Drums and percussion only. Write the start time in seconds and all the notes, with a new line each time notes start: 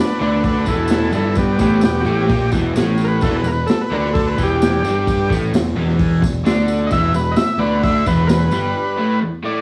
0.44 kick, open hi-hat, tambourine
0.66 kick, tambourine
0.88 snare, open hi-hat, tambourine
1.12 tambourine
1.35 kick, open hi-hat, tambourine
1.59 kick, tambourine
1.81 snare, open hi-hat, tambourine
2.05 tambourine
2.20 snare
2.29 kick, open hi-hat, tambourine
2.52 kick, tambourine
2.76 snare, open hi-hat, tambourine
2.98 tambourine
3.21 kick, open hi-hat, tambourine
3.44 tambourine
3.68 snare, open hi-hat, tambourine
4.05 snare
4.15 kick, open hi-hat, tambourine
4.38 kick, tambourine
4.62 snare, open hi-hat, tambourine
4.85 tambourine
5.07 kick, open hi-hat, tambourine
5.30 kick, tambourine
5.54 snare, open hi-hat, tambourine
5.89 snare
5.99 kick, open hi-hat, tambourine
6.22 kick, tambourine
6.45 snare, open hi-hat, tambourine
6.68 tambourine
6.91 kick, open hi-hat, tambourine
7.14 tambourine
7.36 snare, open hi-hat, tambourine
7.83 kick, open hi-hat, tambourine
8.06 kick, tambourine
8.29 snare, open hi-hat, tambourine
8.51 tambourine